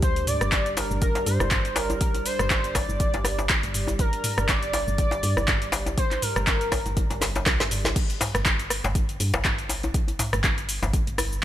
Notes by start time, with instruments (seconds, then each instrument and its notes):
Already playing: fm bass D2, analog synth pad G3 D4 G4
0.02 analog synth lead C5, analog synth pad D5, kick, closed hi-hat, shaker
0.16 closed hi-hat, shaker
0.27 analog synth lead D5, mid tom, open hi-hat, shaker
0.41 fm bass G1, cross-stick, closed hi-hat, shaker
0.52 kick, clap, closed hi-hat, shaker
0.66 closed hi-hat, shaker
0.77 analog synth lead A#4, open hi-hat, djembe slap, shaker
0.91 fm bass G1, shaker
1.02 analog synth lead A#4, kick, closed hi-hat, shaker
1.15 closed hi-hat, djembe slap, shaker
1.26 fm bass G2, analog synth lead C5, open hi-hat, shaker
1.40 fm bass G1, cross-stick, djembe tone, shaker
1.51 kick, clap, closed hi-hat, mid tom, shaker
1.65 closed hi-hat, shaker
1.76 analog synth lead A#4, open hi-hat, djembe slap, shaker
1.90 closed hi-hat, djembe tone, shaker
2.01 kick, closed hi-hat, shaker
2.14 closed hi-hat, djembe tone, shaker
2.26 analog synth lead C5, open hi-hat, shaker
2.39 fm bass G1, cross-stick, closed hi-hat, shaker
2.50 kick, clap, closed hi-hat, shaker
2.64 closed hi-hat, shaker
2.75 analog synth lead D5, kick, cross-stick, open hi-hat, djembe slap, shaker
2.89 fm bass G1, djembe tone, shaker
3.00 kick, closed hi-hat, shaker
3.14 fm bass G1, closed hi-hat, djembe slap, shaker
3.24 cross-stick, open hi-hat, djembe slap, djembe tone, shaker
3.39 djembe slap, shaker
3.49 kick, clap, closed hi-hat, shaker
3.63 fm bass G1, closed hi-hat, shaker
3.74 mid tom, open hi-hat, shaker
3.87 closed hi-hat, djembe tone, shaker
3.99 analog synth lead A#4, kick, closed hi-hat, shaker
4.13 closed hi-hat, shaker
4.24 mid tom, open hi-hat, shaker
4.38 fm bass G1, cross-stick, closed hi-hat, shaker
4.48 analog synth lead D5, kick, clap, closed hi-hat, shaker
4.63 closed hi-hat, shaker
4.73 open hi-hat, djembe slap, shaker
4.87 fm bass G1, shaker
4.98 analog synth lead D5, kick, closed hi-hat, shaker
5.11 closed hi-hat, djembe slap, shaker
5.23 fm bass G2, open hi-hat, shaker
5.37 fm bass G1, cross-stick, djembe tone, shaker
5.48 kick, clap, closed hi-hat, mid tom, shaker
5.62 closed hi-hat, shaker
5.72 open hi-hat, djembe slap, shaker
5.86 closed hi-hat, djembe tone, shaker
5.98 analog synth lead C5, kick, closed hi-hat, shaker
6.11 clap, closed hi-hat, djembe tone, shaker
6.22 analog synth lead A#4, mid tom, open hi-hat, shaker
6.36 fm bass G1, cross-stick, closed hi-hat, shaker
6.47 kick, clap, closed hi-hat, shaker
6.61 closed hi-hat, shaker
6.72 kick, cross-stick, open hi-hat, djembe slap, shaker
6.86 fm bass G1, closed hi-hat, djembe tone, shaker
6.96 kick, closed hi-hat, djembe tone, shaker
7.10 fm bass G1, closed hi-hat, djembe slap, shaker
7.21 snare, open hi-hat, djembe slap, djembe tone, shaker
7.35 closed hi-hat, djembe slap, shaker
7.46 fm bass C2, kick, snare, clap, closed hi-hat, shaker
7.60 fm bass G1, snare, closed hi-hat, shaker
7.71 mid tom, open hi-hat, shaker
7.85 snare, closed hi-hat, djembe tone, shaker
7.96 kick, closed hi-hat, crash, shaker
8.10 closed hi-hat, shaker
8.21 mid tom, open hi-hat, djembe slap, shaker
8.34 fm bass G1, cross-stick, closed hi-hat, shaker
8.46 kick, clap, closed hi-hat, shaker
8.59 closed hi-hat, shaker
8.70 cross-stick, open hi-hat, shaker
8.84 fm bass G1, djembe slap, shaker
8.95 kick, closed hi-hat, shaker
9.09 closed hi-hat, shaker
9.20 fm bass G2, open hi-hat, shaker
9.34 fm bass G1, cross-stick, djembe slap, djembe tone, shaker
9.45 kick, clap, closed hi-hat, mid tom, shaker
9.58 closed hi-hat, shaker
9.69 open hi-hat, djembe slap, shaker
9.83 closed hi-hat, djembe tone, shaker
9.94 kick, closed hi-hat, shaker
10.08 closed hi-hat, djembe tone, shaker
10.19 mid tom, open hi-hat, djembe slap, shaker
10.33 fm bass G1, cross-stick, closed hi-hat, shaker
10.44 kick, clap, closed hi-hat, shaker
10.58 closed hi-hat, shaker
10.69 open hi-hat, shaker
10.82 fm bass G1, djembe slap, djembe tone, shaker
10.93 kick, closed hi-hat, shaker
11.07 fm bass G1, closed hi-hat, shaker
11.18 cross-stick, open hi-hat, djembe tone, shaker
11.32 shaker